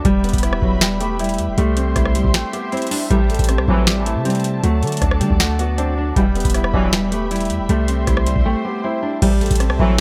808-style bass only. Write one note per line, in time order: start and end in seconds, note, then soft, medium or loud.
0.05 0.32 E1 loud
0.33 0.61 E1 loud
0.62 1.40 E1 loud
1.39 1.50 E2 loud
1.48 1.57 E1 loud
1.58 1.94 C2 loud
1.96 2.23 C2 loud
2.24 2.34 C2 loud
3.11 3.38 A1 loud
3.39 3.60 A1 loud
3.58 3.67 C2 loud
3.68 4.17 A1 loud
4.16 4.61 C3 loud
4.63 4.84 D2 loud
4.83 5.01 D3 loud
5.02 5.22 D2 loud
5.21 5.30 D3 loud
5.30 6.13 D2 loud
6.16 6.44 E1 loud
6.45 6.72 E1 loud
6.74 7.52 E1 loud
7.50 7.61 E2 loud
7.60 7.69 E1 loud
7.69 8.06 C2 loud
8.07 8.35 C2 loud
8.36 8.45 C2 loud
9.22 9.50 A1 loud
9.51 9.71 A1 loud
9.70 9.79 C2 loud
9.79 10.00 A1 loud